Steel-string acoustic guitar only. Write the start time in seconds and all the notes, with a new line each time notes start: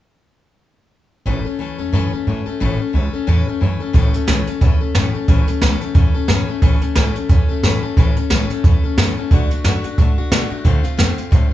1.26 A2 E3 A3 C#4 A4
1.45 A3 C#4 A4
1.59 E3 A3 C#4 A4
1.78 A3 C#4 A4
1.93 A2 E3 A3 C#4 A4
2.12 A3 C#4 A4
2.27 E3 A3 C#4 A4
2.46 A3 C#4 A4
2.60 A2 E3 A3 C#4 A4
2.79 A3 C#4 A4
2.93 E3 A3 C#4 A4
3.13 A3 C#4 A4
3.27 A2 E3 A3 C#4 A4
3.47 A3 C#4 A4
3.61 E3 A3 C#4 A4
3.80 A3 C#4 A4
3.93 A2 E3 A3 C#4 A4
4.13 A3 C#4 A4
4.27 A2 E3 A3 C#4 A4
4.47 A3 C#4 A4
4.61 E3 A3 C#4 A4
4.80 A3 C#4 A4
4.95 A2 E3 A3 C#4 A4
5.14 A3 C#4 A4
5.28 A2 E3 A3 C#4 A4
5.47 A3 C#4 A4
5.62 A2 E3 A3 C#4 A4
5.81 A3 C#4 A4
5.94 E3 A3 C#4 A4
6.14 A3 C#4 A4
6.28 A2 E3 A3 C#4 A4
6.48 A3 C#4 A4
6.62 A2 E3 A3 C#4 A4
6.82 A3 C#4 A4
6.95 A2 E3 A3 C#4 A4
7.15 A3 C#4 A4
7.29 E3 A3 C#4 A4
7.49 A3 C#4 A4
7.64 A2 E3 A3 C#4 A4
7.83 A3 C#4 A4
7.97 A2 E3 A3 C#4 A4
8.17 A3 C#4 A4
8.31 A2 E3 A3 C#4 A4
8.51 A3 C#4 A4
8.65 E3 A3 C#4 A4
8.83 A3 C#4 A4
8.98 A2 E3 A3 C#4 A4
9.17 A3 C#4 A4
9.32 D3 A3 D4 F#4
9.50 A3 D4 F#4
9.64 D3 A3 D4 F#4
9.84 A3 D4 F#4
9.98 D3 A3 D4 F#4
10.18 A3 D4 F#4
10.32 D3 A3 D4 F#4
10.50 A3 D4 F#4
10.64 D3 A3 C4 F4
10.83 A3 C4 F4
10.97 D3 A3 C4 F4
11.16 A3 C4 F4
11.31 D3 A3 C4 F4